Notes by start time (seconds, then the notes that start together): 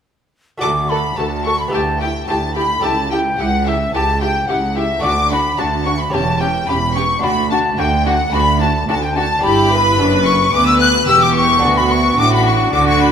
0.58 A3 F#4 D5 D6
0.62 D2 F#4 A4
0.89 F#4 A4 B5
1.17 D2 F#4 A4 A5
1.45 F#4 A4 C#6
1.59 B5
1.68 B3 G4 E5
1.72 D2 E4 G4 A5
2.00 E4 G4 G5
2.28 D2 E4 G4 A5
2.56 E4 G4 B5
2.80 A3 G4 E5
2.84 C#2 E4 A5
3.11 E4 G4 G5
3.38 C#2 E4 G4 F#5
3.66 E4 G4 E5
3.94 C#2 E4 G4 A5
4.21 E4 G4 G5
4.48 C#2 E4 G4 F#5
4.76 E4 G4 E5
4.99 A3 F#4 D5 D6
5.03 D2 D4 F#4 D6
5.31 D4 F#4 B5
5.58 D2 D4 F#4 A5
5.85 D4 F#4 C#6
5.99 B5
6.10 E1 E2 C#4 G4 C#5 A5
6.14 A5
6.40 C#4 G4 G5
6.68 E1 E2 C#4 G4 B5
6.96 C#4 G4 C#6
7.19 D4 F#4 D5
7.23 D2 F#4 B5
7.50 D4 F#4 A5
7.77 D2 D4 F#4 G5
8.06 D4 F#4 F#5
8.32 D2 D4 F#4 B5
8.60 D4 F#4 A5
8.88 D2 D4 F#4 A5
9.03 G5
9.15 D4 F#4 A5
9.39 D4 G4 D5
9.43 G1 G2 E4 G4 B5
9.72 B4
9.98 F#1 F#2 D4
10.25 C#4 C#6
10.52 D2 B3 B4 D6
10.67 E6
10.79 F#6
11.07 E1 E2 B3 G4 E6
11.21 D6
11.35 C#6
11.59 D2 D4 F#4 D5
11.63 D2 F#4
11.77 B5
11.91 C#6
12.18 A1 A2 D4 F#4 D6
12.33 B5
12.46 C#6
12.73 D2 D3 F#4 D6
12.88 C#6
13.00 B5